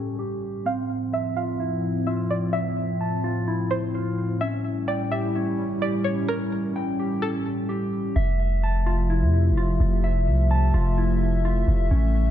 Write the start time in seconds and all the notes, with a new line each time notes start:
Already playing: A2 G3 C#4 G4 A4 G5
0.19 G4
0.66 A2 F3 C4 F5
1.13 E5
1.36 F4 F5
1.60 E4
2.07 F4 E5
2.30 D5
2.53 E5
3.01 A5
3.24 F4
3.48 E4
3.71 C5
3.95 F4
4.41 G3 C#4 E4 E5
4.88 D5 G5
5.11 G4 E5
5.36 C#4
5.82 G4 D5
6.04 C#5
6.28 C#4 A#4
6.76 G5
6.99 G4
7.22 C#4 A4
7.69 G4
8.16 F1 C3 F3 A3 E5
8.63 A5
8.86 F4
9.10 E4
9.22 F2
9.51 F1
9.57 F4
9.80 F1
10.04 E5
10.27 C2
10.51 A5
10.74 F1 F4
10.98 E4
11.45 F4
11.68 F1
11.91 A1 C#3 G3 C#4